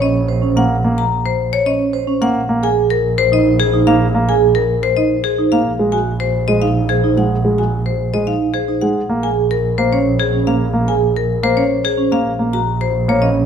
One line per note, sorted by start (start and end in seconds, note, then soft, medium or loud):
0.00 2.20 A#1 medium
0.00 0.19 C#4 medium
0.00 0.19 D#5 medium
0.28 0.47 C5 medium
0.42 0.60 C#4 medium
0.56 0.74 A#3 medium
0.56 0.74 F#5 medium
0.84 1.02 A#3 medium
0.98 1.16 A#5 medium
1.26 1.43 C5 medium
1.53 1.71 C#5 medium
1.66 1.84 C#4 medium
1.66 1.84 D#5 medium
1.93 2.12 C5 medium
2.07 2.25 C#4 medium
2.21 2.39 A#3 medium
2.21 2.39 F#5 medium
2.36 5.51 A#1 medium
2.49 2.67 A#3 medium
2.63 2.81 G#4 medium
2.63 2.81 G#5 medium
2.90 3.08 A#4 medium
3.18 3.36 C5 medium
3.32 3.50 D#4 medium
3.32 3.50 D#5 medium
3.59 3.77 G#4 medium
3.59 3.77 C5 medium
3.73 3.91 D#4 medium
3.87 4.05 A#3 medium
3.87 4.05 F5 medium
4.15 4.32 A#3 medium
4.29 4.46 G#4 medium
4.29 4.46 G#5 medium
4.55 4.73 A#4 medium
4.83 5.01 C5 medium
4.97 5.15 D#4 medium
4.97 5.15 D#5 medium
5.24 5.42 G#4 medium
5.24 5.42 C5 medium
5.38 5.56 D#4 medium
5.52 5.70 A#3 medium
5.52 5.70 F5 medium
5.66 8.81 A#1 medium
5.79 5.97 G#3 medium
5.92 6.11 F#4 medium
5.92 6.11 G#5 medium
6.20 6.38 C5 medium
6.48 6.66 G#3 medium
6.48 6.66 D#5 medium
6.62 6.80 D#4 medium
6.62 6.80 F5 medium
6.89 7.07 G#4 medium
6.89 7.07 C5 medium
7.04 7.21 D#4 medium
7.17 7.35 G#3 medium
7.17 7.35 F#5 soft
7.45 7.62 G#3 medium
7.58 7.76 F#4 soft
7.58 7.76 G#5 soft
7.86 8.04 C5 soft
8.14 8.31 G#3 medium
8.14 8.31 D#5 medium
8.27 8.45 D#4 soft
8.27 8.45 F5 medium
8.54 8.72 G#4 medium
8.54 8.72 C5 medium
8.68 8.86 D#4 medium
8.81 9.00 G#3 medium
8.81 9.00 F#5 soft
8.96 12.11 A#1 medium
9.09 9.27 A#3 medium
9.23 9.41 G#4 medium
9.23 9.41 G#5 medium
9.51 9.69 A#4 medium
9.78 9.96 A#3 medium
9.78 9.96 C5 medium
9.92 10.10 C#4 medium
9.92 10.10 C#5 soft
10.19 10.37 G#4 medium
10.19 10.37 C5 medium
10.33 10.51 C#4 medium
10.47 10.65 A#3 medium
10.47 10.65 F5 medium
10.73 10.92 A#3 medium
10.88 11.06 G#4 medium
10.88 11.06 G#5 medium
11.16 11.34 A#4 medium
11.43 11.61 A#3 medium
11.43 11.61 C5 medium
11.57 11.75 C#4 medium
11.57 11.75 C#5 medium
11.84 12.03 G#4 medium
11.84 12.03 C5 medium
11.98 12.16 C#4 medium
12.12 12.30 A#3 medium
12.12 12.30 F5 medium
12.26 13.46 A#1 medium
12.39 12.57 A#3 medium
12.53 12.71 F#4 medium
12.53 12.71 A#5 medium
12.81 12.99 C5 medium
13.08 13.26 A#3 medium
13.08 13.27 C#5 medium
13.22 13.40 C#4 medium
13.22 13.40 D#5 medium